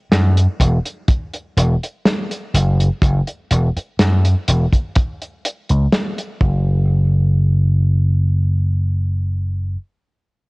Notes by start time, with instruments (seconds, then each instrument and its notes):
0.12 slap bass F#2, snare, closed hi-hat
0.37 closed hi-hat
0.60 slap bass E1, kick, closed hi-hat
0.85 closed hi-hat
1.08 kick, closed hi-hat
1.34 closed hi-hat
1.57 slap bass E1, closed hi-hat
1.83 closed hi-hat
2.05 snare, closed hi-hat
2.31 closed hi-hat
2.54 slap bass F#1, closed hi-hat
2.80 closed hi-hat
3.02 slap bass F#1, kick, closed hi-hat
3.27 closed hi-hat
3.51 slap bass E1, closed hi-hat
3.76 muted slap bass stroke, closed hi-hat
3.99 slap bass F#2, snare, closed hi-hat
4.25 closed hi-hat
4.48 slap bass E1, closed hi-hat
4.73 kick, closed hi-hat
4.95 kick, closed hi-hat
5.22 closed hi-hat
5.45 closed hi-hat
5.69 slap bass C#2, closed hi-hat
5.92 snare, closed hi-hat
6.18 closed hi-hat
6.41 slap bass F#1, kick